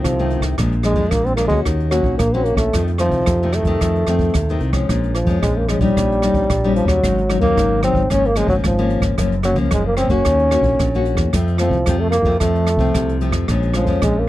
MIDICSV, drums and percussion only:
0, 0, Header, 1, 2, 480
1, 0, Start_track
1, 0, Key_signature, -5, "minor"
1, 0, Tempo, 537634
1, 523, Time_signature, 4, 2, 24, 8
1, 12755, End_track
2, 0, Start_track
2, 0, Title_t, "Drums"
2, 40, Note_on_c, 9, 37, 60
2, 40, Note_on_c, 9, 42, 63
2, 41, Note_on_c, 9, 36, 81
2, 129, Note_off_c, 9, 37, 0
2, 129, Note_off_c, 9, 42, 0
2, 130, Note_off_c, 9, 36, 0
2, 171, Note_on_c, 9, 42, 27
2, 261, Note_off_c, 9, 42, 0
2, 270, Note_on_c, 9, 42, 41
2, 360, Note_off_c, 9, 42, 0
2, 376, Note_on_c, 9, 37, 63
2, 376, Note_on_c, 9, 42, 29
2, 378, Note_on_c, 9, 36, 63
2, 466, Note_off_c, 9, 37, 0
2, 466, Note_off_c, 9, 42, 0
2, 467, Note_off_c, 9, 36, 0
2, 517, Note_on_c, 9, 37, 67
2, 517, Note_on_c, 9, 42, 62
2, 519, Note_on_c, 9, 36, 62
2, 607, Note_off_c, 9, 37, 0
2, 607, Note_off_c, 9, 42, 0
2, 609, Note_off_c, 9, 36, 0
2, 643, Note_on_c, 9, 42, 28
2, 732, Note_off_c, 9, 42, 0
2, 744, Note_on_c, 9, 37, 62
2, 744, Note_on_c, 9, 42, 43
2, 833, Note_off_c, 9, 37, 0
2, 833, Note_off_c, 9, 42, 0
2, 850, Note_on_c, 9, 42, 27
2, 856, Note_on_c, 9, 36, 63
2, 939, Note_off_c, 9, 42, 0
2, 945, Note_off_c, 9, 36, 0
2, 992, Note_on_c, 9, 37, 69
2, 992, Note_on_c, 9, 42, 63
2, 999, Note_on_c, 9, 36, 84
2, 1081, Note_off_c, 9, 37, 0
2, 1081, Note_off_c, 9, 42, 0
2, 1088, Note_off_c, 9, 36, 0
2, 1127, Note_on_c, 9, 42, 29
2, 1216, Note_off_c, 9, 42, 0
2, 1225, Note_on_c, 9, 37, 66
2, 1225, Note_on_c, 9, 42, 47
2, 1314, Note_off_c, 9, 37, 0
2, 1314, Note_off_c, 9, 42, 0
2, 1337, Note_on_c, 9, 36, 69
2, 1426, Note_off_c, 9, 36, 0
2, 1477, Note_on_c, 9, 37, 63
2, 1477, Note_on_c, 9, 42, 59
2, 1480, Note_on_c, 9, 36, 66
2, 1567, Note_off_c, 9, 37, 0
2, 1567, Note_off_c, 9, 42, 0
2, 1569, Note_off_c, 9, 36, 0
2, 1607, Note_on_c, 9, 42, 27
2, 1697, Note_off_c, 9, 42, 0
2, 1707, Note_on_c, 9, 37, 62
2, 1707, Note_on_c, 9, 42, 47
2, 1797, Note_off_c, 9, 37, 0
2, 1797, Note_off_c, 9, 42, 0
2, 1820, Note_on_c, 9, 36, 63
2, 1909, Note_off_c, 9, 36, 0
2, 1956, Note_on_c, 9, 37, 64
2, 1956, Note_on_c, 9, 42, 63
2, 1962, Note_on_c, 9, 36, 81
2, 2046, Note_off_c, 9, 37, 0
2, 2046, Note_off_c, 9, 42, 0
2, 2051, Note_off_c, 9, 36, 0
2, 2191, Note_on_c, 9, 42, 46
2, 2280, Note_off_c, 9, 42, 0
2, 2296, Note_on_c, 9, 37, 66
2, 2296, Note_on_c, 9, 42, 30
2, 2300, Note_on_c, 9, 36, 62
2, 2385, Note_off_c, 9, 37, 0
2, 2385, Note_off_c, 9, 42, 0
2, 2389, Note_off_c, 9, 36, 0
2, 2441, Note_on_c, 9, 37, 62
2, 2441, Note_on_c, 9, 42, 61
2, 2443, Note_on_c, 9, 36, 64
2, 2530, Note_off_c, 9, 37, 0
2, 2530, Note_off_c, 9, 42, 0
2, 2533, Note_off_c, 9, 36, 0
2, 2567, Note_on_c, 9, 42, 32
2, 2656, Note_off_c, 9, 42, 0
2, 2664, Note_on_c, 9, 37, 60
2, 2664, Note_on_c, 9, 42, 46
2, 2753, Note_off_c, 9, 37, 0
2, 2753, Note_off_c, 9, 42, 0
2, 2780, Note_on_c, 9, 42, 31
2, 2781, Note_on_c, 9, 36, 62
2, 2870, Note_off_c, 9, 42, 0
2, 2871, Note_off_c, 9, 36, 0
2, 2913, Note_on_c, 9, 37, 68
2, 2913, Note_on_c, 9, 42, 71
2, 2923, Note_on_c, 9, 36, 90
2, 3002, Note_off_c, 9, 37, 0
2, 3002, Note_off_c, 9, 42, 0
2, 3012, Note_off_c, 9, 36, 0
2, 3149, Note_on_c, 9, 37, 65
2, 3149, Note_on_c, 9, 42, 50
2, 3238, Note_off_c, 9, 37, 0
2, 3238, Note_off_c, 9, 42, 0
2, 3254, Note_on_c, 9, 42, 34
2, 3263, Note_on_c, 9, 36, 67
2, 3344, Note_off_c, 9, 42, 0
2, 3352, Note_off_c, 9, 36, 0
2, 3401, Note_on_c, 9, 37, 62
2, 3401, Note_on_c, 9, 42, 66
2, 3405, Note_on_c, 9, 36, 63
2, 3490, Note_off_c, 9, 37, 0
2, 3490, Note_off_c, 9, 42, 0
2, 3495, Note_off_c, 9, 36, 0
2, 3531, Note_on_c, 9, 42, 29
2, 3620, Note_off_c, 9, 42, 0
2, 3630, Note_on_c, 9, 37, 58
2, 3630, Note_on_c, 9, 42, 43
2, 3720, Note_off_c, 9, 37, 0
2, 3720, Note_off_c, 9, 42, 0
2, 3735, Note_on_c, 9, 42, 27
2, 3741, Note_on_c, 9, 36, 66
2, 3824, Note_off_c, 9, 42, 0
2, 3830, Note_off_c, 9, 36, 0
2, 3874, Note_on_c, 9, 37, 66
2, 3874, Note_on_c, 9, 42, 63
2, 3882, Note_on_c, 9, 36, 80
2, 3963, Note_off_c, 9, 37, 0
2, 3963, Note_off_c, 9, 42, 0
2, 3972, Note_off_c, 9, 36, 0
2, 4006, Note_on_c, 9, 42, 28
2, 4095, Note_off_c, 9, 42, 0
2, 4110, Note_on_c, 9, 42, 42
2, 4199, Note_off_c, 9, 42, 0
2, 4223, Note_on_c, 9, 37, 64
2, 4223, Note_on_c, 9, 42, 27
2, 4224, Note_on_c, 9, 36, 64
2, 4312, Note_off_c, 9, 37, 0
2, 4312, Note_off_c, 9, 42, 0
2, 4313, Note_off_c, 9, 36, 0
2, 4367, Note_on_c, 9, 36, 64
2, 4368, Note_on_c, 9, 37, 63
2, 4368, Note_on_c, 9, 42, 62
2, 4457, Note_off_c, 9, 36, 0
2, 4457, Note_off_c, 9, 37, 0
2, 4457, Note_off_c, 9, 42, 0
2, 4494, Note_on_c, 9, 42, 29
2, 4584, Note_off_c, 9, 42, 0
2, 4595, Note_on_c, 9, 37, 61
2, 4595, Note_on_c, 9, 42, 43
2, 4684, Note_off_c, 9, 37, 0
2, 4684, Note_off_c, 9, 42, 0
2, 4706, Note_on_c, 9, 36, 68
2, 4709, Note_on_c, 9, 42, 29
2, 4795, Note_off_c, 9, 36, 0
2, 4799, Note_off_c, 9, 42, 0
2, 4845, Note_on_c, 9, 37, 68
2, 4845, Note_on_c, 9, 42, 64
2, 4846, Note_on_c, 9, 36, 88
2, 4934, Note_off_c, 9, 37, 0
2, 4934, Note_off_c, 9, 42, 0
2, 4936, Note_off_c, 9, 36, 0
2, 5076, Note_on_c, 9, 37, 68
2, 5076, Note_on_c, 9, 42, 49
2, 5166, Note_off_c, 9, 37, 0
2, 5166, Note_off_c, 9, 42, 0
2, 5185, Note_on_c, 9, 36, 67
2, 5187, Note_on_c, 9, 42, 31
2, 5274, Note_off_c, 9, 36, 0
2, 5276, Note_off_c, 9, 42, 0
2, 5328, Note_on_c, 9, 36, 65
2, 5332, Note_on_c, 9, 37, 67
2, 5332, Note_on_c, 9, 42, 65
2, 5417, Note_off_c, 9, 36, 0
2, 5421, Note_off_c, 9, 37, 0
2, 5421, Note_off_c, 9, 42, 0
2, 5462, Note_on_c, 9, 42, 31
2, 5551, Note_off_c, 9, 42, 0
2, 5556, Note_on_c, 9, 37, 65
2, 5556, Note_on_c, 9, 42, 47
2, 5645, Note_off_c, 9, 37, 0
2, 5645, Note_off_c, 9, 42, 0
2, 5663, Note_on_c, 9, 36, 64
2, 5663, Note_on_c, 9, 42, 30
2, 5752, Note_off_c, 9, 36, 0
2, 5752, Note_off_c, 9, 42, 0
2, 5801, Note_on_c, 9, 37, 69
2, 5801, Note_on_c, 9, 42, 63
2, 5804, Note_on_c, 9, 36, 85
2, 5891, Note_off_c, 9, 37, 0
2, 5891, Note_off_c, 9, 42, 0
2, 5893, Note_off_c, 9, 36, 0
2, 5934, Note_on_c, 9, 42, 31
2, 6023, Note_off_c, 9, 42, 0
2, 6034, Note_on_c, 9, 42, 50
2, 6124, Note_off_c, 9, 42, 0
2, 6141, Note_on_c, 9, 36, 69
2, 6144, Note_on_c, 9, 37, 62
2, 6144, Note_on_c, 9, 42, 30
2, 6230, Note_off_c, 9, 36, 0
2, 6233, Note_off_c, 9, 37, 0
2, 6233, Note_off_c, 9, 42, 0
2, 6281, Note_on_c, 9, 36, 66
2, 6282, Note_on_c, 9, 37, 66
2, 6282, Note_on_c, 9, 42, 70
2, 6370, Note_off_c, 9, 36, 0
2, 6371, Note_off_c, 9, 37, 0
2, 6371, Note_off_c, 9, 42, 0
2, 6410, Note_on_c, 9, 42, 31
2, 6500, Note_off_c, 9, 42, 0
2, 6513, Note_on_c, 9, 37, 64
2, 6513, Note_on_c, 9, 42, 46
2, 6603, Note_off_c, 9, 37, 0
2, 6603, Note_off_c, 9, 42, 0
2, 6621, Note_on_c, 9, 36, 67
2, 6711, Note_off_c, 9, 36, 0
2, 6762, Note_on_c, 9, 36, 96
2, 6765, Note_on_c, 9, 37, 69
2, 6765, Note_on_c, 9, 42, 69
2, 6851, Note_off_c, 9, 36, 0
2, 6854, Note_off_c, 9, 37, 0
2, 6854, Note_off_c, 9, 42, 0
2, 6988, Note_on_c, 9, 37, 70
2, 6988, Note_on_c, 9, 42, 47
2, 7078, Note_off_c, 9, 37, 0
2, 7078, Note_off_c, 9, 42, 0
2, 7097, Note_on_c, 9, 36, 68
2, 7186, Note_off_c, 9, 36, 0
2, 7233, Note_on_c, 9, 37, 64
2, 7233, Note_on_c, 9, 42, 70
2, 7238, Note_on_c, 9, 36, 65
2, 7322, Note_off_c, 9, 37, 0
2, 7322, Note_off_c, 9, 42, 0
2, 7327, Note_off_c, 9, 36, 0
2, 7367, Note_on_c, 9, 42, 29
2, 7456, Note_off_c, 9, 42, 0
2, 7460, Note_on_c, 9, 37, 65
2, 7460, Note_on_c, 9, 42, 49
2, 7550, Note_off_c, 9, 37, 0
2, 7550, Note_off_c, 9, 42, 0
2, 7575, Note_on_c, 9, 36, 68
2, 7664, Note_off_c, 9, 36, 0
2, 7712, Note_on_c, 9, 37, 69
2, 7712, Note_on_c, 9, 42, 66
2, 7718, Note_on_c, 9, 36, 81
2, 7801, Note_off_c, 9, 37, 0
2, 7801, Note_off_c, 9, 42, 0
2, 7807, Note_off_c, 9, 36, 0
2, 7843, Note_on_c, 9, 42, 29
2, 7933, Note_off_c, 9, 42, 0
2, 7944, Note_on_c, 9, 42, 43
2, 8033, Note_off_c, 9, 42, 0
2, 8052, Note_on_c, 9, 37, 64
2, 8052, Note_on_c, 9, 42, 30
2, 8057, Note_on_c, 9, 36, 68
2, 8142, Note_off_c, 9, 37, 0
2, 8142, Note_off_c, 9, 42, 0
2, 8146, Note_off_c, 9, 36, 0
2, 8194, Note_on_c, 9, 37, 64
2, 8194, Note_on_c, 9, 42, 63
2, 8198, Note_on_c, 9, 36, 62
2, 8284, Note_off_c, 9, 37, 0
2, 8284, Note_off_c, 9, 42, 0
2, 8288, Note_off_c, 9, 36, 0
2, 8320, Note_on_c, 9, 42, 31
2, 8409, Note_off_c, 9, 42, 0
2, 8422, Note_on_c, 9, 37, 62
2, 8422, Note_on_c, 9, 42, 43
2, 8512, Note_off_c, 9, 37, 0
2, 8512, Note_off_c, 9, 42, 0
2, 8529, Note_on_c, 9, 42, 30
2, 8536, Note_on_c, 9, 36, 65
2, 8618, Note_off_c, 9, 42, 0
2, 8625, Note_off_c, 9, 36, 0
2, 8668, Note_on_c, 9, 37, 69
2, 8668, Note_on_c, 9, 42, 65
2, 8678, Note_on_c, 9, 36, 89
2, 8758, Note_off_c, 9, 37, 0
2, 8758, Note_off_c, 9, 42, 0
2, 8767, Note_off_c, 9, 36, 0
2, 8899, Note_on_c, 9, 37, 67
2, 8899, Note_on_c, 9, 42, 47
2, 8989, Note_off_c, 9, 37, 0
2, 8989, Note_off_c, 9, 42, 0
2, 9010, Note_on_c, 9, 42, 32
2, 9017, Note_on_c, 9, 36, 69
2, 9099, Note_off_c, 9, 42, 0
2, 9106, Note_off_c, 9, 36, 0
2, 9150, Note_on_c, 9, 37, 69
2, 9150, Note_on_c, 9, 42, 63
2, 9158, Note_on_c, 9, 36, 67
2, 9239, Note_off_c, 9, 37, 0
2, 9239, Note_off_c, 9, 42, 0
2, 9248, Note_off_c, 9, 36, 0
2, 9279, Note_on_c, 9, 42, 30
2, 9368, Note_off_c, 9, 42, 0
2, 9385, Note_on_c, 9, 37, 66
2, 9385, Note_on_c, 9, 42, 45
2, 9474, Note_off_c, 9, 37, 0
2, 9474, Note_off_c, 9, 42, 0
2, 9493, Note_on_c, 9, 42, 30
2, 9499, Note_on_c, 9, 36, 63
2, 9583, Note_off_c, 9, 42, 0
2, 9588, Note_off_c, 9, 36, 0
2, 9637, Note_on_c, 9, 37, 62
2, 9637, Note_on_c, 9, 42, 65
2, 9641, Note_on_c, 9, 36, 85
2, 9727, Note_off_c, 9, 37, 0
2, 9727, Note_off_c, 9, 42, 0
2, 9730, Note_off_c, 9, 36, 0
2, 9768, Note_on_c, 9, 42, 30
2, 9857, Note_off_c, 9, 42, 0
2, 9867, Note_on_c, 9, 42, 48
2, 9956, Note_off_c, 9, 42, 0
2, 9972, Note_on_c, 9, 37, 66
2, 9972, Note_on_c, 9, 42, 31
2, 9978, Note_on_c, 9, 36, 67
2, 10061, Note_off_c, 9, 37, 0
2, 10061, Note_off_c, 9, 42, 0
2, 10067, Note_off_c, 9, 36, 0
2, 10115, Note_on_c, 9, 37, 65
2, 10115, Note_on_c, 9, 42, 67
2, 10121, Note_on_c, 9, 36, 66
2, 10205, Note_off_c, 9, 37, 0
2, 10205, Note_off_c, 9, 42, 0
2, 10210, Note_off_c, 9, 36, 0
2, 10244, Note_on_c, 9, 42, 32
2, 10334, Note_off_c, 9, 42, 0
2, 10341, Note_on_c, 9, 37, 62
2, 10341, Note_on_c, 9, 42, 47
2, 10431, Note_off_c, 9, 37, 0
2, 10431, Note_off_c, 9, 42, 0
2, 10458, Note_on_c, 9, 36, 66
2, 10547, Note_off_c, 9, 36, 0
2, 10589, Note_on_c, 9, 37, 68
2, 10589, Note_on_c, 9, 42, 72
2, 10598, Note_on_c, 9, 36, 92
2, 10678, Note_off_c, 9, 37, 0
2, 10678, Note_off_c, 9, 42, 0
2, 10687, Note_off_c, 9, 36, 0
2, 10822, Note_on_c, 9, 37, 68
2, 10822, Note_on_c, 9, 42, 50
2, 10911, Note_off_c, 9, 37, 0
2, 10911, Note_off_c, 9, 42, 0
2, 10936, Note_on_c, 9, 36, 69
2, 11026, Note_off_c, 9, 36, 0
2, 11073, Note_on_c, 9, 37, 64
2, 11073, Note_on_c, 9, 42, 65
2, 11080, Note_on_c, 9, 36, 68
2, 11162, Note_off_c, 9, 37, 0
2, 11162, Note_off_c, 9, 42, 0
2, 11169, Note_off_c, 9, 36, 0
2, 11207, Note_on_c, 9, 42, 31
2, 11296, Note_off_c, 9, 42, 0
2, 11309, Note_on_c, 9, 37, 66
2, 11309, Note_on_c, 9, 42, 51
2, 11398, Note_off_c, 9, 37, 0
2, 11398, Note_off_c, 9, 42, 0
2, 11418, Note_on_c, 9, 36, 68
2, 11507, Note_off_c, 9, 36, 0
2, 11557, Note_on_c, 9, 37, 62
2, 11557, Note_on_c, 9, 42, 64
2, 11561, Note_on_c, 9, 36, 86
2, 11646, Note_off_c, 9, 37, 0
2, 11646, Note_off_c, 9, 42, 0
2, 11650, Note_off_c, 9, 36, 0
2, 11687, Note_on_c, 9, 42, 30
2, 11776, Note_off_c, 9, 42, 0
2, 11790, Note_on_c, 9, 42, 43
2, 11879, Note_off_c, 9, 42, 0
2, 11896, Note_on_c, 9, 37, 68
2, 11896, Note_on_c, 9, 42, 29
2, 11900, Note_on_c, 9, 36, 62
2, 11985, Note_off_c, 9, 37, 0
2, 11985, Note_off_c, 9, 42, 0
2, 11989, Note_off_c, 9, 36, 0
2, 12036, Note_on_c, 9, 37, 69
2, 12036, Note_on_c, 9, 42, 61
2, 12040, Note_on_c, 9, 36, 67
2, 12126, Note_off_c, 9, 37, 0
2, 12126, Note_off_c, 9, 42, 0
2, 12129, Note_off_c, 9, 36, 0
2, 12165, Note_on_c, 9, 42, 30
2, 12254, Note_off_c, 9, 42, 0
2, 12263, Note_on_c, 9, 37, 66
2, 12263, Note_on_c, 9, 42, 44
2, 12352, Note_off_c, 9, 37, 0
2, 12352, Note_off_c, 9, 42, 0
2, 12377, Note_on_c, 9, 42, 28
2, 12379, Note_on_c, 9, 36, 62
2, 12466, Note_off_c, 9, 42, 0
2, 12468, Note_off_c, 9, 36, 0
2, 12516, Note_on_c, 9, 37, 75
2, 12516, Note_on_c, 9, 42, 65
2, 12521, Note_on_c, 9, 36, 91
2, 12605, Note_off_c, 9, 37, 0
2, 12605, Note_off_c, 9, 42, 0
2, 12610, Note_off_c, 9, 36, 0
2, 12755, End_track
0, 0, End_of_file